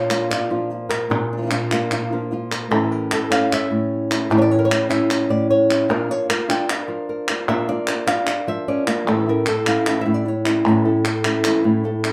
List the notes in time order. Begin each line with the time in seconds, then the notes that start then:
Already playing: A#2 F3 A#3 D4 F4 C#5
0.10 A#3 D4 F4, clap
0.31 A#2 F3 A#3 D4 F4 D5, clap
0.50 F3 A#3 D4 F4
0.70 muted nylon-string guitar stroke
0.89 A#4, clap
1.10 A#2, muted nylon-string guitar stroke, clap
1.33 D4
1.37 F3 A#3 D4 F4
1.42 F3 A#3 D4 F4
1.46 F3 A#3 D4 F4
1.51 A#2 F3 A#3 D4 F4, clap
1.71 A#3 D4 F4, clap
1.91 A#2 F3 A#3 D4 F4, clap
2.11 F3 A#3 D4 F4 A#4
2.31 F4, muted nylon-string guitar stroke
2.52 A#4, clap
2.71 A2 E3 A3 C#4 E4 A4, clap
2.91 A#4
3.11 E3 A3 C#4 E4 A4, clap
3.30 A3 C#4 E4 F5, clap
3.51 E5, muted nylon-string guitar stroke, clap
3.71 A2
4.11 A3 C#4 E4, clap
4.30 A2 E3 A3 C#4 E4 D5
4.38 C#5 D5
4.51 C#5
4.59 A#4
4.65 C#5
4.70 E3 A3 C#4 E4, clap
4.89 A3 C#4 E4 E5, clap
5.11 muted nylon-string guitar stroke, clap
5.29 A2 D5
5.50 C#5
5.69 A3 C#4 E4, clap
5.89 A#2 F3 A#3 D4 F4 A#4
6.09 A#3 D4 F4 C#5
6.29 F3 A#3 D4 F4 A#4, clap
6.48 A#3 D4 F4 G5, clap
6.69 F5, muted nylon-string guitar stroke, clap
6.88 F3 A#4
7.09 A#4
7.28 A#3 D4 F4 A#4, clap
7.48 A#2 F3 A#3 D4 F4 E5
7.68 A#3 D4 F4 D5
7.87 F3 A#3 D4 F4 A#4, clap
8.07 A#3 D4 F4 F5, clap
8.27 muted nylon-string guitar stroke, clap
8.47 F3 E5
8.68 C#4 D5
8.87 A#3 D4 F4, clap
9.07 A2 E3 A3 C#4 E4 A4
9.27 A3 C#4 E4 A#4
9.46 A4, muted nylon-string guitar stroke, clap
9.66 A3 C#4 E4 F5, clap
9.86 A2 E3 A3 C#4 E4, clap
10.01 E5
10.06 A2 A3 C#4 E4
10.14 D5
10.25 C#5, muted nylon-string guitar stroke
10.44 A3 C#4 E4 D5, clap
10.64 A2 E3 A3 C#4 E4 C#5
10.85 A3 C#4 E4 A4
11.05 A4, muted nylon-string guitar stroke, clap
11.24 A3 C#4 E4 A4, clap
11.44 A2 E3 A3 C#4 E4, clap
11.64 A2 A3 C#4 E4
11.84 A4, muted nylon-string guitar stroke
12.04 A3 C#4 E4, clap